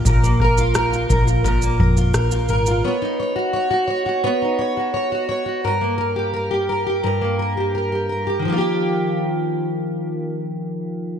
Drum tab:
SH |xx-xxxxxxx-xxxxx|----------------|----------------|----------------|
SD |--r-r-------r---|----------------|----------------|----------------|
BD |o-o---o-o-o-----|----------------|----------------|----------------|